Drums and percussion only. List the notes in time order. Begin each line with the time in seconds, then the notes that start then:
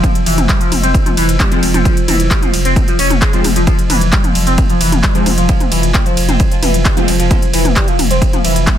0.04 kick, closed hi-hat, mid tom, ride
0.15 closed hi-hat
0.26 open hi-hat, ride
0.38 closed hi-hat, mid tom
0.49 kick, clap, closed hi-hat, ride
0.61 closed hi-hat
0.72 open hi-hat, mid tom, ride
0.83 closed hi-hat
0.94 kick, closed hi-hat, ride
1.06 closed hi-hat, mid tom
1.17 open hi-hat, ride
1.29 closed hi-hat
1.40 kick, clap, closed hi-hat, mid tom, ride
1.52 closed hi-hat
1.63 open hi-hat, ride
1.74 closed hi-hat, mid tom
1.85 kick, closed hi-hat, ride
1.97 closed hi-hat
2.08 open hi-hat, mid tom, ride
2.20 closed hi-hat
2.31 kick, clap, closed hi-hat, ride
2.42 closed hi-hat, mid tom
2.54 open hi-hat, ride
2.65 closed hi-hat
2.76 kick, closed hi-hat, mid tom, ride
2.88 closed hi-hat
2.99 open hi-hat, ride
3.10 closed hi-hat, mid tom
3.22 kick, clap, closed hi-hat, ride
3.33 closed hi-hat
3.44 open hi-hat, mid tom, ride
3.56 closed hi-hat
3.67 kick, closed hi-hat, ride
3.79 closed hi-hat
3.90 open hi-hat, mid tom, ride
4.01 closed hi-hat
4.13 kick, clap, closed hi-hat, ride
4.24 closed hi-hat, mid tom
4.35 open hi-hat, ride
4.47 closed hi-hat
4.58 kick, closed hi-hat, mid tom, ride
4.70 closed hi-hat
4.81 open hi-hat, ride
4.92 closed hi-hat, mid tom
5.03 kick, clap, closed hi-hat, ride
5.15 closed hi-hat
5.26 open hi-hat, mid tom, ride
5.38 closed hi-hat
5.49 kick, closed hi-hat, ride
5.60 closed hi-hat, mid tom
5.72 open hi-hat, ride
5.83 closed hi-hat
5.94 kick, clap, closed hi-hat, mid tom, ride
6.06 closed hi-hat
6.17 open hi-hat, ride
6.29 closed hi-hat, mid tom
6.40 kick, closed hi-hat, ride
6.51 closed hi-hat
6.63 open hi-hat, mid tom, ride
6.74 closed hi-hat
6.85 kick, clap, closed hi-hat, ride
6.97 closed hi-hat, mid tom
7.08 open hi-hat, ride
7.20 closed hi-hat
7.31 kick, closed hi-hat, mid tom, ride
7.42 closed hi-hat
7.54 open hi-hat, ride
7.65 closed hi-hat, mid tom
7.76 kick, clap, closed hi-hat, ride
7.88 closed hi-hat
7.99 open hi-hat, mid tom, ride
8.11 closed hi-hat
8.22 kick, closed hi-hat, ride
8.33 closed hi-hat, mid tom
8.45 open hi-hat, ride
8.56 closed hi-hat
8.67 kick, clap, closed hi-hat, mid tom, ride